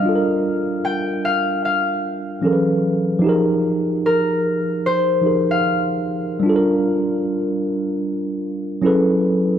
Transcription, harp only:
X:1
M:4/4
L:1/16
Q:"Swing 16ths" 1/4=75
K:Gphr
V:1 name="Harp"
f4 g2 f2 f6 z2 | z4 B4 c3 f4- f- | f12 z4 |]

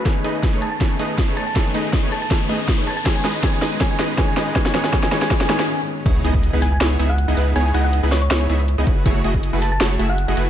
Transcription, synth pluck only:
X:1
M:4/4
L:1/16
Q:"Swing 16ths" 1/4=160
K:C#m
V:1 name="Synth pluck"
z6 a a z6 a a | z6 a a z6 a a | g g z2 g g z2 g g z2 g g z2 | g g g g g g g g z g g g z4 |
z6 g g z3 f3 z2 | g g f f z2 c c c4 z4 | z6 a a z3 f3 z2 |]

